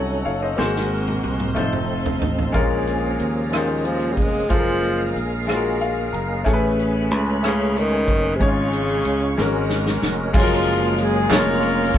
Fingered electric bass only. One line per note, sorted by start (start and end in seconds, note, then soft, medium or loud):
0.00 0.22 C2 medium
0.26 0.56 F#1 medium
0.59 1.20 G#1 medium
1.25 1.54 C2 medium
1.57 2.18 F1 medium
2.22 2.52 A1 medium
2.55 3.16 A#1 medium
3.20 4.14 D#2 medium
4.18 4.48 F1 medium
4.51 5.12 F#1 medium
5.16 6.09 A#1 medium
6.13 6.43 F#1 medium
6.46 7.11 A1 medium
7.11 8.04 C#2 medium
8.08 8.41 F#1 medium
8.41 9.01 G#1 medium
9.05 9.35 C#2 medium
9.38 9.98 G#1 medium
10.03 10.32 F1 medium
10.34 11.27 F#1 medium
11.31 11.91 F1 medium
11.94 11.98 F#1 medium